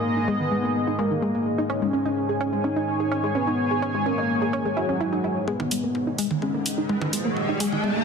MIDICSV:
0, 0, Header, 1, 7, 480
1, 0, Start_track
1, 0, Key_signature, 5, "minor"
1, 0, Tempo, 472441
1, 1724, Time_signature, 4, 2, 24, 8
1, 8171, End_track
2, 0, Start_track
2, 0, Title_t, "Analog synth pad"
2, 0, Program_c, 0, 89
2, 0, Note_on_c, 0, 56, 74
2, 0, Note_on_c, 0, 63, 71
2, 0, Note_on_c, 0, 68, 65
2, 0, Note_on_c, 0, 75, 81
2, 1684, Note_off_c, 0, 63, 0
2, 1686, Note_off_c, 0, 68, 0
2, 1686, Note_off_c, 0, 75, 0
2, 1724, Note_on_c, 0, 68, 68
2, 1724, Note_on_c, 0, 73, 81
2, 1724, Note_on_c, 0, 80, 66
2, 5524, Note_off_c, 0, 56, 0
2, 5526, Note_off_c, 0, 68, 0
2, 5526, Note_off_c, 0, 73, 0
2, 5526, Note_off_c, 0, 80, 0
2, 5563, Note_on_c, 0, 56, 78
2, 5563, Note_on_c, 0, 75, 81
2, 5564, Note_on_c, 0, 63, 69
2, 5564, Note_on_c, 0, 68, 71
2, 8171, Note_off_c, 0, 56, 0
2, 8171, Note_off_c, 0, 63, 0
2, 8171, Note_off_c, 0, 68, 0
2, 8171, Note_off_c, 0, 75, 0
2, 8171, End_track
3, 0, Start_track
3, 0, Title_t, "Analog synth lead"
3, 0, Program_c, 1, 81
3, 0, Note_on_c, 1, 58, 97
3, 283, Note_on_c, 1, 59, 93
3, 299, Note_off_c, 1, 58, 0
3, 911, Note_off_c, 1, 59, 0
3, 1004, Note_on_c, 1, 58, 89
3, 1631, Note_off_c, 1, 58, 0
3, 1723, Note_on_c, 1, 61, 98
3, 2591, Note_off_c, 1, 61, 0
3, 2684, Note_on_c, 1, 63, 93
3, 3311, Note_off_c, 1, 63, 0
3, 3405, Note_on_c, 1, 59, 96
3, 4032, Note_off_c, 1, 59, 0
3, 4125, Note_on_c, 1, 58, 91
3, 4751, Note_off_c, 1, 58, 0
3, 4844, Note_on_c, 1, 54, 96
3, 5471, Note_off_c, 1, 54, 0
3, 5564, Note_on_c, 1, 59, 101
3, 6431, Note_off_c, 1, 59, 0
3, 6524, Note_on_c, 1, 61, 95
3, 7244, Note_on_c, 1, 58, 101
3, 7259, Note_off_c, 1, 61, 0
3, 7871, Note_off_c, 1, 58, 0
3, 7964, Note_on_c, 1, 59, 93
3, 8171, Note_off_c, 1, 59, 0
3, 8171, End_track
4, 0, Start_track
4, 0, Title_t, "Synth pluck"
4, 0, Program_c, 2, 84
4, 168, Note_on_c, 2, 63, 71
4, 235, Note_off_c, 2, 63, 0
4, 284, Note_on_c, 2, 56, 96
4, 356, Note_off_c, 2, 56, 0
4, 408, Note_on_c, 2, 51, 70
4, 509, Note_off_c, 2, 51, 0
4, 523, Note_on_c, 2, 56, 74
4, 567, Note_off_c, 2, 56, 0
4, 648, Note_on_c, 2, 58, 75
4, 715, Note_off_c, 2, 58, 0
4, 887, Note_on_c, 2, 63, 74
4, 955, Note_off_c, 2, 63, 0
4, 1004, Note_on_c, 2, 56, 96
4, 1076, Note_off_c, 2, 56, 0
4, 1127, Note_on_c, 2, 51, 74
4, 1229, Note_off_c, 2, 51, 0
4, 1244, Note_on_c, 2, 56, 78
4, 1287, Note_off_c, 2, 56, 0
4, 1368, Note_on_c, 2, 58, 74
4, 1435, Note_off_c, 2, 58, 0
4, 1608, Note_on_c, 2, 63, 77
4, 1676, Note_off_c, 2, 63, 0
4, 1724, Note_on_c, 2, 61, 97
4, 1796, Note_off_c, 2, 61, 0
4, 1848, Note_on_c, 2, 56, 76
4, 1950, Note_off_c, 2, 56, 0
4, 1964, Note_on_c, 2, 61, 72
4, 2007, Note_off_c, 2, 61, 0
4, 2088, Note_on_c, 2, 63, 76
4, 2155, Note_off_c, 2, 63, 0
4, 2328, Note_on_c, 2, 68, 72
4, 2396, Note_off_c, 2, 68, 0
4, 2444, Note_on_c, 2, 61, 98
4, 2516, Note_off_c, 2, 61, 0
4, 2568, Note_on_c, 2, 56, 73
4, 2669, Note_off_c, 2, 56, 0
4, 2684, Note_on_c, 2, 61, 78
4, 2727, Note_off_c, 2, 61, 0
4, 2808, Note_on_c, 2, 63, 75
4, 2875, Note_off_c, 2, 63, 0
4, 3048, Note_on_c, 2, 68, 74
4, 3116, Note_off_c, 2, 68, 0
4, 3164, Note_on_c, 2, 61, 101
4, 3236, Note_off_c, 2, 61, 0
4, 3288, Note_on_c, 2, 56, 77
4, 3390, Note_off_c, 2, 56, 0
4, 3404, Note_on_c, 2, 61, 76
4, 3447, Note_off_c, 2, 61, 0
4, 3528, Note_on_c, 2, 63, 75
4, 3595, Note_off_c, 2, 63, 0
4, 3768, Note_on_c, 2, 68, 76
4, 3836, Note_off_c, 2, 68, 0
4, 3884, Note_on_c, 2, 61, 101
4, 3956, Note_off_c, 2, 61, 0
4, 4008, Note_on_c, 2, 56, 73
4, 4109, Note_off_c, 2, 56, 0
4, 4124, Note_on_c, 2, 61, 81
4, 4167, Note_off_c, 2, 61, 0
4, 4248, Note_on_c, 2, 63, 72
4, 4316, Note_off_c, 2, 63, 0
4, 4488, Note_on_c, 2, 68, 76
4, 4556, Note_off_c, 2, 68, 0
4, 4604, Note_on_c, 2, 61, 99
4, 4676, Note_off_c, 2, 61, 0
4, 4728, Note_on_c, 2, 56, 75
4, 4830, Note_off_c, 2, 56, 0
4, 4845, Note_on_c, 2, 64, 78
4, 4952, Note_off_c, 2, 64, 0
4, 4969, Note_on_c, 2, 61, 73
4, 5009, Note_off_c, 2, 61, 0
4, 5085, Note_on_c, 2, 64, 81
4, 5156, Note_off_c, 2, 64, 0
4, 5208, Note_on_c, 2, 63, 74
4, 5276, Note_off_c, 2, 63, 0
4, 5324, Note_on_c, 2, 64, 72
4, 5396, Note_off_c, 2, 64, 0
4, 5564, Note_on_c, 2, 56, 98
4, 5636, Note_off_c, 2, 56, 0
4, 5688, Note_on_c, 2, 51, 77
4, 5790, Note_off_c, 2, 51, 0
4, 5805, Note_on_c, 2, 56, 73
4, 5848, Note_off_c, 2, 56, 0
4, 5929, Note_on_c, 2, 58, 71
4, 5996, Note_off_c, 2, 58, 0
4, 6168, Note_on_c, 2, 63, 74
4, 6236, Note_off_c, 2, 63, 0
4, 6284, Note_on_c, 2, 56, 103
4, 6356, Note_off_c, 2, 56, 0
4, 6409, Note_on_c, 2, 51, 79
4, 6510, Note_off_c, 2, 51, 0
4, 6524, Note_on_c, 2, 56, 78
4, 6567, Note_off_c, 2, 56, 0
4, 6648, Note_on_c, 2, 58, 76
4, 6716, Note_off_c, 2, 58, 0
4, 6888, Note_on_c, 2, 63, 73
4, 6956, Note_off_c, 2, 63, 0
4, 7004, Note_on_c, 2, 56, 95
4, 7076, Note_off_c, 2, 56, 0
4, 7128, Note_on_c, 2, 51, 77
4, 7229, Note_off_c, 2, 51, 0
4, 7244, Note_on_c, 2, 56, 73
4, 7287, Note_off_c, 2, 56, 0
4, 7368, Note_on_c, 2, 58, 75
4, 7436, Note_off_c, 2, 58, 0
4, 7608, Note_on_c, 2, 63, 77
4, 7676, Note_off_c, 2, 63, 0
4, 7724, Note_on_c, 2, 56, 104
4, 7796, Note_off_c, 2, 56, 0
4, 7847, Note_on_c, 2, 51, 75
4, 7949, Note_off_c, 2, 51, 0
4, 7964, Note_on_c, 2, 56, 80
4, 8007, Note_off_c, 2, 56, 0
4, 8088, Note_on_c, 2, 58, 76
4, 8155, Note_off_c, 2, 58, 0
4, 8171, End_track
5, 0, Start_track
5, 0, Title_t, "Synth drone"
5, 0, Program_c, 3, 95
5, 0, Note_on_c, 3, 44, 69
5, 0, Note_on_c, 3, 51, 72
5, 5552, Note_off_c, 3, 44, 0
5, 5552, Note_off_c, 3, 51, 0
5, 5564, Note_on_c, 3, 44, 74
5, 5564, Note_on_c, 3, 51, 74
5, 8171, Note_off_c, 3, 44, 0
5, 8171, Note_off_c, 3, 51, 0
5, 8171, End_track
6, 0, Start_track
6, 0, Title_t, "Riser"
6, 0, Program_c, 4, 103
6, 5564, Note_on_c, 4, 60, 77
6, 8171, Note_off_c, 4, 60, 0
6, 8171, End_track
7, 0, Start_track
7, 0, Title_t, "Drums"
7, 5564, Note_on_c, 9, 47, 44
7, 5666, Note_off_c, 9, 47, 0
7, 5688, Note_on_c, 9, 45, 84
7, 5789, Note_off_c, 9, 45, 0
7, 5804, Note_on_c, 9, 46, 98
7, 5906, Note_off_c, 9, 46, 0
7, 6044, Note_on_c, 9, 47, 46
7, 6146, Note_off_c, 9, 47, 0
7, 6284, Note_on_c, 9, 46, 92
7, 6386, Note_off_c, 9, 46, 0
7, 6408, Note_on_c, 9, 45, 80
7, 6509, Note_off_c, 9, 45, 0
7, 6524, Note_on_c, 9, 47, 49
7, 6626, Note_off_c, 9, 47, 0
7, 6764, Note_on_c, 9, 46, 97
7, 6865, Note_off_c, 9, 46, 0
7, 7004, Note_on_c, 9, 47, 47
7, 7106, Note_off_c, 9, 47, 0
7, 7128, Note_on_c, 9, 45, 85
7, 7229, Note_off_c, 9, 45, 0
7, 7244, Note_on_c, 9, 46, 99
7, 7346, Note_off_c, 9, 46, 0
7, 7484, Note_on_c, 9, 47, 50
7, 7586, Note_off_c, 9, 47, 0
7, 7724, Note_on_c, 9, 46, 103
7, 7825, Note_off_c, 9, 46, 0
7, 7848, Note_on_c, 9, 45, 81
7, 7949, Note_off_c, 9, 45, 0
7, 7964, Note_on_c, 9, 47, 51
7, 8065, Note_off_c, 9, 47, 0
7, 8171, End_track
0, 0, End_of_file